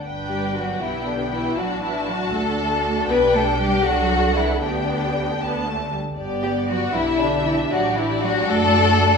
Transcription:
<<
  \new Staff \with { instrumentName = "Violin section" } { \time 6/8 \key g \major \tempo 4. = 78 g''4. g''4. | a''2. | g''4. fis''4. | g''4. a''4 r8 |
d''4. e''4. | d''4. d''4. | }
  \new Staff \with { instrumentName = "Violin section" } { \time 6/8 \key g \major r8 g'8 fis'8 e'8 d'8 e'8 | fis'8 e'8 fis'8 a'4. | b'8 a'8 g'8 fis'4 e'8 | d'2~ d'8 r8 |
r8 g'8 fis'8 e'8 d'8 e'8 | fis'8 e'8 fis'8 a'4. | }
  \new Staff \with { instrumentName = "Viola section" } { \time 6/8 \key g \major << { b'4. g'4. | fis'2. | g'4. a'4. | g'4. b8 a8 g8 |
g'4. g'4.~ | g'4. fis'4. | } \\ { d'4. b4. | d'4. d'4.~ | d'2. | b4. r4. |
b4. d'4.~ | d'4. d'4. | } >> }
  \new Staff \with { instrumentName = "Cello section" } { \clef bass \time 6/8 \key g \major r8 g8 fis8 e8 d8 e8 | fis8 e8 fis8 a4. | b8 a8 g8 fis4 e8 | d2~ d8 r8 |
r8 g8 fis8 e8 d8 e8 | fis8 e8 fis8 a4. | }
  \new Staff \with { instrumentName = "Double bass section" } { \clef bass \time 6/8 \key g \major g,,4. b,,4. | a,,4. d,4. | b,,4. c,4. | d,4. d,4. |
g,,4. b,,4. | a,,4. fis,,4. | }
>>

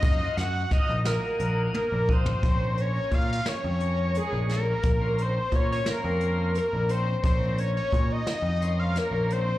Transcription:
<<
  \new Staff \with { instrumentName = "Analog synth lead" } { \time 7/8 \key bes \minor \tempo 4 = 87 ees''8 ges''8 ees''8 bes'4 bes'8 c''8~ | c''8 des''8 f''16 f''16 des''4 aes'8 bes'8~ | bes'8 c''8 des''16 des''16 bes'4 bes'8 c''8 | c''8 des''16 des''8 ees''4 f''16 bes'8 c''8 | }
  \new Staff \with { instrumentName = "Tonewheel organ" } { \time 7/8 \key bes \minor <f' ges' c''>8 r8 <f' ges' ees''>16 r16 <f' ges' ees''>4 r8 <f' ges' ees''>8 | <des' bes'>4. r8 <des' bes' des''>4~ <des' bes' des''>16 r16 | r16 <des' bes' c''>8 r16 <des' bes' c''>16 r16 <des' bes' c''>4 r8 <des' bes' c''>16 r16 | <des' bes'>4. r8 <des' bes' c''>4~ <des' bes' c''>16 r16 | }
  \new Staff \with { instrumentName = "Picked electric bass" } { \clef bass \time 7/8 \key bes \minor ges,8 ges,8 r16 bes,,8 r16 bes,,8 r16 bes,,8. | bes,,4 bes,8 r16 f,4 bes,,8. | bes,,4 bes,8 r16 f,4 bes,,8. | bes,,4 bes,8 r16 f,4 bes,,8. | }
  \new DrumStaff \with { instrumentName = "Drums" } \drummode { \time 7/8 <hh bd>8 <hh sn>8 <hh bd sn>8 <hh sn>8 hh8 tommh8 bd16 tomfh16 | <hh bd>8 hh8 <hh bd>8 <hh sn>8 hh8 hh8 <hh sn>8 | <hh bd>8 hh8 <hh bd>8 <hh sn>8 hh8 hh8 hh8 | <hh bd>8 hh8 <hh bd>8 <hh sn>8 hh8 <hh sn>8 hh8 | }
>>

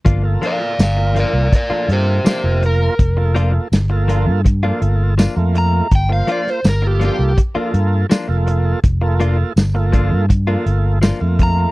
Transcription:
<<
  \new Staff \with { instrumentName = "Overdriven electric guitar" } { \time 4/4 \key g \minor \tempo 4 = 82 r8 <d'' f''>8 <d'' f''>8 <bes' d''>8 <bes' d''>8 <g' c''>8 <g' c''>8 bes'8~ | bes'8 r2. bes''8 | g''16 f''16 d''16 c''16 bes'16 g'16 g'8 r2 | r2. r8 bes''8 | }
  \new Staff \with { instrumentName = "Tonewheel organ" } { \time 4/4 \key g \minor r16 <bes f' a'>8. r16 <bes f' bes'>8. r16 <bes f' a'>8. r16 <bes f' bes'>8. | r16 <bes f' a'>8. r16 <bes f' a'>8. r16 <bes f' a'>8. r16 <a bes f'>8. | r16 <bes f' c''>8. r16 <bes f' a'>8. r16 <bes f' a'>8. r16 <bes f' a'>8. | r16 <bes f' a'>8. r16 <bes f' a'>8. r16 <bes f' a'>8. r16 <a bes f'>8. | }
  \new Staff \with { instrumentName = "Clean electric guitar" } { \time 4/4 \key g \minor <f bes d' f'>16 r16 <f bes d' f'>16 r8. <f bes d' f'>16 r8 <f bes d' f'>16 r8 <f bes d' f'>16 r8. | r8 <f bes d' f'>16 r8. <f bes d' f'>16 r8 <f bes d' f'>16 r8 <f bes d' f'>16 r8. | r8 <f bes d' f'>16 r8. <f bes d' f'>16 r8 <f bes d' f'>16 r8 <f bes d' f'>16 r8. | r8 <f bes d' f'>16 r8. <f bes d' f'>16 r8 <f bes d' f'>16 r8 <f bes d' f'>16 r8. | }
  \new Staff \with { instrumentName = "Fingered electric bass" } { \clef bass \time 4/4 \key g \minor g,,8 r8 g,,8. c,16 r8 g,8 r16 f,,8. | f,,4 g,,8. g,8. g,,8. f,8. | g,,8 r8 g,,8. c,16 r8 g,8 r16 f,,8. | f,,4 g,,8. g,8. g,,8. f,8. | }
  \new DrumStaff \with { instrumentName = "Drums" } \drummode { \time 4/4 <hh bd>8 hh8 <hh sn tamb>8 hh8 <hh bd>8 hh8 <hh sn tamb>8 hh8 | <hh bd>8 hh8 <hh sn tamb>8 hh8 <hh bd>8 hh8 <hh sn tamb>8 hh8 | <hh bd>8 hh16 sn16 <hh sn tamb>8 hh8 <hh bd>8 hh8 <hh sn tamb>8 hh8 | <hh bd>8 hh8 <hh sn tamb>8 <hh bd>8 <hh bd>8 hh8 <hh sn tamb>8 <hh bd>8 | }
>>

